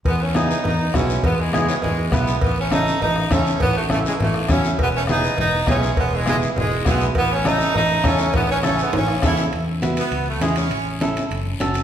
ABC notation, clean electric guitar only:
X:1
M:4/4
L:1/8
Q:1/4=203
K:E
V:1 name="Clean electric guitar"
z2 [B,EG] z3 [B,EF] z | z2 [B,EG] z3 [B,EB] z | z2 [CEA] z3 [CEA] z | z2 [CEA] z3 [CEF] z |
z2 [B,EG] z3 [B,EG] z | z2 [B,EG] z3 [B,EF] z | z2 [CEA] z3 [CEA] z | z2 [CEA] z3 [CEA] z |
z2 [B,EF] z3 [CEG] z | z2 [CEA] z3 [CFA] z |]